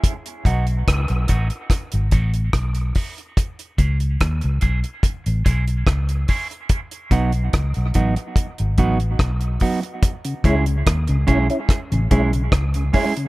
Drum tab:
HH |xxxxxxxxxxxxxxox|xxxxxxxxxxxxxxox|xxxxxxxxxxxxxxox|xxxxxxxxxxxxxxox|
SD |----r---r---r---|----r-------r---|----r-------r---|----r---r---r---|
BD |o-o-o-o-o-o-o-o-|o-o-o-o-o-o-o-o-|o-o-o-o-o-o-o-o-|o-o-o-o-o-o-o-o-|